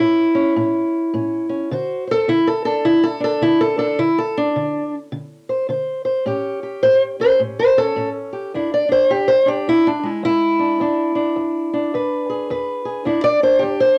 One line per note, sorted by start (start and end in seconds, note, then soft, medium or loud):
0.00 0.52 A2 medium
0.00 0.34 C#4 soft
0.00 1.70 E4 medium
0.35 0.56 C#4 medium
0.56 1.09 A2 medium
0.56 1.13 C#4 soft
1.14 1.67 A2 medium
1.14 1.48 C#4 soft
1.49 1.69 C#4 soft
1.71 2.24 D3 medium
1.71 2.10 F#4 medium
1.71 2.07 C5 soft
2.07 2.29 A4 loud
2.07 2.28 C5 soft
2.28 2.81 D3 medium
2.28 2.47 E4 loud
2.47 2.64 A4 medium
2.65 3.19 D4 medium
2.65 2.85 A4 loud
2.85 3.38 D3 medium
2.85 3.04 E4 loud
3.03 3.23 A4 loud
3.20 3.76 D4 soft
3.20 3.43 A4 loud
3.41 3.94 D3 medium
3.41 3.61 E4 loud
3.61 3.78 A4 loud
3.77 3.97 D4 soft
3.77 3.98 A4 loud
3.99 4.51 D3 medium
3.99 4.18 E4 loud
4.18 4.37 A4 loud
4.37 4.94 D4 medium
4.56 5.08 D3 medium
5.12 5.65 D3 medium
5.49 5.68 C5 soft
5.69 6.22 D3 medium
5.69 6.04 C5 soft
6.05 6.24 C5 soft
6.26 6.79 A2 medium
6.26 7.18 C#4 medium
6.26 6.62 G4 medium
6.63 7.78 G4 soft
6.83 7.36 A2 medium
6.83 7.02 C5 loud
7.20 7.76 C#4 medium
7.20 7.40 C5 loud
7.39 7.92 A2 medium
7.59 7.78 C5 loud
7.77 7.96 C#4 soft
7.77 8.09 A4 loud
7.96 8.49 A2 medium
7.96 8.51 C#4 soft
8.33 8.51 G4 soft
8.54 9.06 E2 medium
8.54 8.88 D4 soft
8.54 8.73 E4 medium
8.74 8.91 D5 loud
8.89 9.45 D4 soft
8.89 9.10 C5 loud
9.09 9.62 E2 medium
9.09 9.29 G4 loud
9.28 9.47 C5 loud
9.46 9.86 D4 medium
9.46 9.67 G4 loud
9.68 10.20 E2 medium
9.68 9.87 E4 loud
9.87 10.05 D4 medium
10.03 10.84 G#3 soft
10.03 10.24 E4 medium
10.23 10.75 E2 medium
10.23 11.94 E4 loud
10.59 10.81 D4 soft
10.80 11.32 E2 medium
10.80 11.15 D4 medium
11.15 11.73 D4 soft
11.36 11.88 E2 medium
11.73 13.04 D4 soft
11.94 12.46 E2 medium
11.94 12.50 B4 soft
12.30 12.84 G#4 medium
12.50 13.02 E2 medium
12.50 13.04 B4 soft
12.85 13.04 G#4 soft
13.05 13.57 E2 medium
13.05 13.40 D4 medium
13.05 13.23 E4 medium
13.24 13.43 D5 loud
13.43 13.98 D4 soft
13.43 13.62 C5 loud
13.59 13.79 G4 loud
13.63 13.98 E2 medium
13.80 13.98 C5 loud